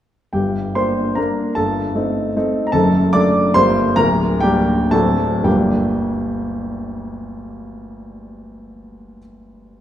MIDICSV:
0, 0, Header, 1, 2, 480
1, 0, Start_track
1, 0, Key_signature, -2, "minor"
1, 0, Tempo, 416956
1, 385, Time_signature, 3, 2, 24, 8
1, 1350, Tempo, 389358
1, 3750, Tempo, 417537
1, 4710, Tempo, 480384
1, 5670, Tempo, 529101
1, 7110, Tempo, 499584
1, 8550, Tempo, 483481
1, 10342, End_track
2, 0, Start_track
2, 0, Title_t, "Grand piano"
2, 0, Program_c, 0, 0
2, 376, Note_on_c, 0, 79, 52
2, 383, Note_on_c, 0, 31, 33
2, 384, Note_on_c, 0, 67, 40
2, 387, Note_on_c, 0, 43, 37
2, 619, Control_c, 0, 64, 127
2, 834, Note_off_c, 0, 67, 0
2, 853, Note_off_c, 0, 31, 0
2, 855, Note_off_c, 0, 43, 0
2, 864, Note_off_c, 0, 79, 0
2, 868, Note_on_c, 0, 84, 65
2, 871, Note_on_c, 0, 72, 54
2, 872, Note_on_c, 0, 58, 32
2, 877, Note_on_c, 0, 62, 34
2, 1306, Note_off_c, 0, 58, 0
2, 1309, Note_off_c, 0, 62, 0
2, 1318, Note_off_c, 0, 72, 0
2, 1328, Note_on_c, 0, 82, 56
2, 1341, Note_on_c, 0, 62, 41
2, 1342, Note_on_c, 0, 58, 37
2, 1345, Note_on_c, 0, 70, 38
2, 1350, Note_off_c, 0, 84, 0
2, 1366, Control_c, 0, 64, 0
2, 1780, Note_off_c, 0, 62, 0
2, 1781, Note_off_c, 0, 58, 0
2, 1797, Note_off_c, 0, 70, 0
2, 1817, Note_on_c, 0, 81, 67
2, 1822, Note_off_c, 0, 82, 0
2, 1829, Note_on_c, 0, 69, 48
2, 1831, Note_on_c, 0, 43, 43
2, 1835, Note_on_c, 0, 31, 35
2, 2096, Control_c, 0, 64, 127
2, 2301, Note_off_c, 0, 43, 0
2, 2303, Note_off_c, 0, 31, 0
2, 2308, Note_on_c, 0, 57, 38
2, 2321, Note_on_c, 0, 60, 35
2, 2323, Note_on_c, 0, 63, 40
2, 2752, Note_off_c, 0, 57, 0
2, 2759, Note_off_c, 0, 60, 0
2, 2760, Note_off_c, 0, 63, 0
2, 2813, Control_c, 0, 64, 0
2, 2819, Note_on_c, 0, 60, 46
2, 2822, Note_on_c, 0, 57, 44
2, 2827, Note_on_c, 0, 63, 48
2, 3137, Note_off_c, 0, 69, 0
2, 3180, Note_off_c, 0, 81, 0
2, 3193, Note_on_c, 0, 82, 54
2, 3227, Note_off_c, 0, 60, 0
2, 3229, Note_off_c, 0, 57, 0
2, 3231, Note_off_c, 0, 63, 0
2, 3260, Note_on_c, 0, 81, 74
2, 3266, Note_on_c, 0, 42, 51
2, 3267, Note_on_c, 0, 69, 58
2, 3268, Note_off_c, 0, 82, 0
2, 3275, Note_on_c, 0, 30, 48
2, 3477, Control_c, 0, 64, 127
2, 3718, Note_off_c, 0, 69, 0
2, 3737, Note_off_c, 0, 42, 0
2, 3741, Note_off_c, 0, 30, 0
2, 3749, Note_off_c, 0, 81, 0
2, 3760, Note_on_c, 0, 86, 90
2, 3766, Note_on_c, 0, 74, 67
2, 3774, Note_on_c, 0, 57, 43
2, 3776, Note_on_c, 0, 62, 47
2, 4194, Note_off_c, 0, 57, 0
2, 4195, Note_off_c, 0, 62, 0
2, 4203, Note_off_c, 0, 74, 0
2, 4234, Note_off_c, 0, 86, 0
2, 4237, Note_on_c, 0, 84, 94
2, 4242, Control_c, 0, 64, 0
2, 4243, Note_on_c, 0, 55, 44
2, 4247, Note_on_c, 0, 31, 56
2, 4249, Note_on_c, 0, 43, 54
2, 4250, Note_on_c, 0, 72, 73
2, 4253, Note_on_c, 0, 58, 43
2, 4259, Note_on_c, 0, 62, 43
2, 4460, Control_c, 0, 64, 127
2, 4671, Note_off_c, 0, 55, 0
2, 4676, Note_off_c, 0, 58, 0
2, 4679, Note_off_c, 0, 62, 0
2, 4688, Note_off_c, 0, 72, 0
2, 4705, Note_off_c, 0, 31, 0
2, 4706, Note_off_c, 0, 43, 0
2, 4714, Note_off_c, 0, 84, 0
2, 4716, Note_on_c, 0, 82, 96
2, 4721, Control_c, 0, 64, 0
2, 4721, Note_on_c, 0, 26, 51
2, 4721, Note_on_c, 0, 38, 58
2, 4724, Note_on_c, 0, 70, 67
2, 4945, Control_c, 0, 64, 127
2, 5143, Note_off_c, 0, 70, 0
2, 5159, Note_off_c, 0, 26, 0
2, 5159, Note_off_c, 0, 38, 0
2, 5161, Note_on_c, 0, 79, 83
2, 5170, Note_off_c, 0, 82, 0
2, 5172, Note_on_c, 0, 55, 48
2, 5182, Note_on_c, 0, 58, 46
2, 5182, Note_on_c, 0, 67, 70
2, 5185, Note_on_c, 0, 62, 50
2, 5632, Note_off_c, 0, 55, 0
2, 5637, Note_off_c, 0, 58, 0
2, 5639, Note_off_c, 0, 62, 0
2, 5643, Note_off_c, 0, 67, 0
2, 5664, Note_on_c, 0, 38, 58
2, 5667, Note_off_c, 0, 79, 0
2, 5667, Note_on_c, 0, 54, 39
2, 5667, Note_on_c, 0, 81, 74
2, 5674, Note_on_c, 0, 26, 50
2, 5676, Note_on_c, 0, 69, 57
2, 5680, Note_on_c, 0, 62, 41
2, 5684, Note_on_c, 0, 60, 42
2, 5688, Control_c, 0, 64, 0
2, 5881, Control_c, 0, 64, 127
2, 6123, Note_off_c, 0, 54, 0
2, 6130, Note_off_c, 0, 38, 0
2, 6130, Note_off_c, 0, 62, 0
2, 6130, Note_off_c, 0, 69, 0
2, 6132, Note_off_c, 0, 60, 0
2, 6140, Note_on_c, 0, 31, 49
2, 6143, Note_on_c, 0, 38, 38
2, 6144, Note_on_c, 0, 55, 42
2, 6148, Note_off_c, 0, 26, 0
2, 6150, Note_on_c, 0, 79, 57
2, 6152, Note_on_c, 0, 58, 44
2, 6152, Note_on_c, 0, 62, 38
2, 6156, Note_on_c, 0, 67, 43
2, 6160, Note_off_c, 0, 81, 0
2, 6176, Control_c, 0, 64, 0
2, 6374, Control_c, 0, 64, 127
2, 9715, Note_off_c, 0, 31, 0
2, 9719, Note_off_c, 0, 38, 0
2, 9719, Note_off_c, 0, 55, 0
2, 9725, Note_off_c, 0, 79, 0
2, 9728, Note_off_c, 0, 58, 0
2, 9728, Note_off_c, 0, 62, 0
2, 9733, Note_off_c, 0, 67, 0
2, 10342, End_track
0, 0, End_of_file